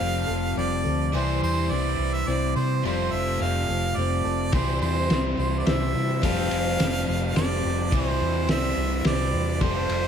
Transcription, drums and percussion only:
4.53 kick loud
4.53 ride medium
5.10 snare medium
5.10 ride medium
5.67 snare medium
5.67 ride medium
6.23 kick loud
6.23 ride medium
6.51 ride medium
6.80 snare medium
6.80 ride medium
7.36 snare medium
7.36 ride medium
7.92 kick loud
7.92 ride medium
8.49 snare medium
8.49 ride medium
9.05 snare medium
9.05 ride medium
9.61 kick loud
9.61 ride medium
9.89 ride medium

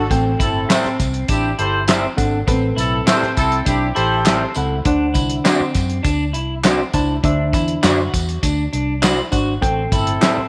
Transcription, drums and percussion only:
0.11 kick loud
0.11 closed hi-hat medium
0.11 tambourine soft
0.40 kick medium
0.40 closed hi-hat medium
0.40 tambourine soft
0.70 snare loud
0.70 clap medium
0.70 closed hi-hat medium
0.70 tambourine medium
0.85 snare soft
1.00 kick medium
1.00 snare soft
1.00 closed hi-hat medium
1.00 tambourine medium
1.14 closed hi-hat soft
1.28 kick medium
1.28 closed hi-hat medium
1.28 tambourine medium
1.59 closed hi-hat medium
1.88 snare loud
1.88 clap medium
1.88 closed hi-hat medium
1.88 tambourine medium
2.18 kick medium
2.18 closed hi-hat medium
2.18 tambourine soft
2.48 kick loud
2.48 closed hi-hat medium
2.48 tambourine soft
2.78 closed hi-hat medium
2.78 tambourine medium
3.07 snare loud
3.07 clap medium
3.07 closed hi-hat medium
3.07 tambourine medium
3.23 snare soft
3.37 kick medium
3.37 closed hi-hat medium
3.37 tambourine medium
3.52 closed hi-hat soft
3.66 kick medium
3.66 closed hi-hat medium
3.66 tambourine medium
3.96 closed hi-hat medium
4.25 snare loud
4.25 clap medium
4.25 closed hi-hat medium
4.25 tambourine medium
4.55 closed hi-hat medium
4.55 tambourine soft
4.85 kick loud
4.85 closed hi-hat medium
5.14 kick medium
5.14 closed hi-hat medium
5.14 tambourine soft
5.30 closed hi-hat medium
5.45 snare loud
5.45 clap medium
5.45 closed hi-hat medium
5.45 tambourine medium
5.75 kick medium
5.75 snare soft
5.75 closed hi-hat medium
5.75 tambourine medium
5.90 closed hi-hat soft
6.05 kick medium
6.05 closed hi-hat medium
6.05 tambourine medium
6.34 closed hi-hat medium
6.64 snare loud
6.64 clap medium
6.64 closed hi-hat medium
6.64 tambourine medium
6.94 kick medium
6.94 closed hi-hat medium
6.94 tambourine soft
7.24 kick loud
7.24 closed hi-hat medium
7.53 kick medium
7.53 closed hi-hat medium
7.53 tambourine medium
7.68 closed hi-hat soft
7.84 snare loud
7.84 clap medium
7.84 closed hi-hat medium
7.84 tambourine medium
8.14 kick medium
8.14 closed hi-hat medium
8.14 tambourine medium
8.29 closed hi-hat soft
8.43 kick medium
8.43 closed hi-hat medium
8.43 tambourine medium
8.73 closed hi-hat medium
9.03 snare loud
9.03 clap medium
9.03 closed hi-hat medium
9.03 tambourine medium
9.32 kick medium
9.32 closed hi-hat medium
9.32 tambourine soft
9.62 kick loud
9.62 closed hi-hat medium
9.92 kick medium
9.92 closed hi-hat medium
9.92 tambourine soft
10.07 closed hi-hat medium
10.22 snare loud
10.22 clap medium
10.22 closed hi-hat medium
10.22 tambourine medium

